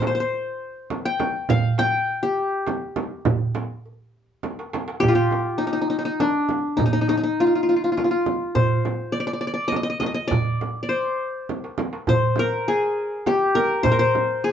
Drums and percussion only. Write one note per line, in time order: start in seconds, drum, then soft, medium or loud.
0.02 darbuka tek medium
0.02 frame drum medium
0.32 darbuka ka soft
0.90 darbuka tek medium
0.90 frame drum medium
1.05 darbuka ka soft
1.20 darbuka tek medium
1.20 frame drum medium
1.49 frame drum medium
1.49 darbuka dum loud
1.78 darbuka tek medium
1.78 frame drum medium
2.08 darbuka ka soft
2.67 darbuka tek medium
2.67 frame drum medium
2.82 darbuka ka soft
2.96 darbuka tek medium
2.96 frame drum medium
3.25 frame drum medium
3.25 darbuka dum medium
3.55 darbuka tek medium
3.55 frame drum medium
3.86 darbuka ka soft
4.43 darbuka tek medium
4.43 frame drum medium
4.59 darbuka ka medium
4.73 darbuka tek medium
4.73 frame drum medium
4.88 darbuka ka medium
5.03 frame drum medium
5.03 darbuka dum loud
5.31 darbuka tek medium
5.31 frame drum medium
6.20 darbuka tek medium
6.20 frame drum medium
6.49 darbuka tek medium
6.49 frame drum medium
6.79 frame drum medium
6.79 darbuka dum medium
7.08 darbuka tek medium
7.08 frame drum medium
7.98 darbuka tek medium
7.98 frame drum medium
8.26 frame drum medium
8.55 frame drum medium
8.55 darbuka dum medium
8.85 darbuka tek medium
8.85 frame drum medium
9.72 darbuka tek medium
9.72 frame drum medium
10.01 darbuka tek medium
10.01 frame drum medium
10.31 frame drum medium
10.31 darbuka dum medium
10.61 darbuka tek medium
10.61 frame drum medium
10.92 darbuka ka soft
11.49 darbuka tek soft
11.49 frame drum medium
11.64 darbuka ka medium
11.78 darbuka tek medium
11.78 frame drum medium
11.93 darbuka ka medium
12.07 frame drum medium
12.07 darbuka dum medium
12.36 darbuka tek medium
12.36 frame drum medium
13.26 darbuka tek medium
13.26 frame drum medium
13.56 darbuka tek medium
13.56 frame drum medium
13.84 frame drum medium
13.84 darbuka dum medium
14.15 frame drum medium